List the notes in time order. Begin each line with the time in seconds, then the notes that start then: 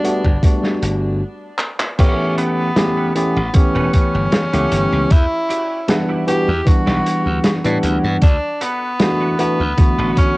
Already playing: D4
0.04 G3 A3 B3 D4 F#4, closed hi-hat
0.25 G1, kick
0.42 G3 A3 B3 D4 F#4, kick, closed hi-hat
0.63 snare
0.82 G1, closed hi-hat
1.59 clap
1.80 clap
1.99 A1 E3 A3 B3 C#4 G4, kick, closed hi-hat, crash
2.38 B3 C#4 G4 A4 B4, closed hi-hat
2.76 E3 A3 B3 C#4 G4, snare, closed hi-hat
2.97 C#4 G4 A4 B4
3.15 E3 A3 B3 C#4 G4, closed hi-hat
3.36 A1, muted clean electric guitar stroke
3.54 E3 A3 B3 C#4 G4, kick, closed hi-hat
3.75 E1 C#4 G4 A4 B4
3.93 C#4, kick, closed hi-hat
4.14 G1
4.32 snare, closed hi-hat
4.53 C#2 E3 A3 B3 C#4 G4 A4 B4, closed hi-hat
4.72 G1, closed hi-hat
4.92 C#2
5.10 E2 E4, kick, closed hi-hat
5.49 E4 F#4 G4 D5, closed hi-hat
5.88 E3 G3 B3 D4 F#5, snare, closed hi-hat
6.08 E4 F#4 G4 D5
6.27 E3 G3 B3 D4 F#4 G4, closed hi-hat
6.48 E2, muted clean electric guitar stroke
6.65 E3 G3 B3 D4 F#4 F#5, kick, closed hi-hat
6.86 B1 E4 F#4 G4 D5, snare
7.06 closed hi-hat
7.26 D2
7.44 snare, closed hi-hat
7.64 A2 E3 G3 B3 D4 E4 F#4 G4 D5 F#5, closed hi-hat
7.83 D2, closed hi-hat
8.04 G2
8.22 D2 D4, kick, closed hi-hat
8.61 B3 D4 F#4 A4 B4, closed hi-hat
8.99 E3 A3 B3 D4 F#4, snare, closed hi-hat
9.20 D4 F#4 A4 B4
9.38 E3 A3 B3 D4 F#4, closed hi-hat
9.59 D2, muted clean electric guitar stroke
9.77 D3 E3 A3 B3 F#4, kick, closed hi-hat
9.98 A1 D4 F#4 A4 B4
10.17 C#4, kick, closed hi-hat